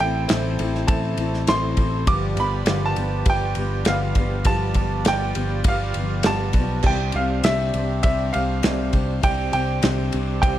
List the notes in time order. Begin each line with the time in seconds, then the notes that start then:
Already playing: A1 E4 A4 C5 G5
0.00 C4 E4 A4 G5, ride
0.28 A1 A2 E3 C4 E4 A4 C5 E5, snare, ride
0.59 A1 E4 A4, ride
0.63 C4
0.75 snare
0.88 A1 E3 C4 A4 C5 E5 A5, kick, ride
0.92 E4 A4
1.17 A1 C4 E4 A4, ride
1.34 snare
1.47 A1 A2 E3 C4 E4 A4 C5 E5 C6, snare, ride
1.77 A1 C4 E4 A4, kick, ride
2.07 G1 G2 D3 F3 G3 B3 D4 F4 G4 B4 F5 D6, kick, ride
2.36 G1 F3 B3 G4 B5, ride
2.41 G3
2.66 G1 G2 D3 F3 G3 B3 G4 B4 F5, snare, ride
2.86 A5
2.96 G1 F3 G3 B3 G4, ride
3.25 G1 F3 G3 B3 G4 B4 F5, kick, ride
3.30 G5
3.55 G1 G4, ride
3.59 F3 G3 B3
3.85 G1 G2 D3 F3 G3 B3 G4 B4 F5, snare, ride
4.15 G1 B3 G4, kick, ride
4.20 F3 G3
4.44 G1 G2 D3 F3 F4 G4 B4 D5 F5 A5, kick, ride
4.49 G3 B3 G4
4.74 G1 G4, kick, ride
4.79 F3 G3 B3
5.05 G1 G2 D3 F3 G3 B3 G4 B4 F5 G5, snare, ride
5.35 G1 F3 G3 B3 G4, ride
5.64 G1 F3 G3 B3 G4 B4 F5, kick, ride
5.68 F5
5.94 G1 G4, ride
5.99 F3 G3 B3
6.23 G1 G2 F3 G4 B4 F5 A5, snare, ride
6.28 D3 G3 B3 G4
6.53 B1, kick, ride
6.58 F3 G3 B3 G4
6.83 C2 C4 D4 G4 C5 D5 G5, kick, crash
6.88 C3 G3 C4 D4 G4
7.12 C2 D4 G4 F5, ride
7.17 C4
7.44 C2 C3 G3 C4 D4 G4 C5 D5 E5, snare, ride
7.74 C2 D4 G4, ride
7.78 C4
8.03 C2 G3 C4 D4 G4 C5 D5 E5, kick, ride
8.08 G4
8.33 C2 C4 D4 G4 F5, ride
8.62 C2 C3 G3 C4 D4 G4 C5 D5, snare, ride
8.93 C2 C4 D4 G4, kick, ride
9.21 C2 C3 G3 C4 D4 G4 C5 G5, kick, ride
9.25 G4 C5 D5
9.52 C2 C4 D4 G4 G5, ride
9.82 C2 C3 G3 C4 D4 G4 C5 D5, snare, ride
10.11 C2 C4 D4 G4, ride
10.41 C2 G3 C4 D4 G4 C5 F5 G5, kick, ride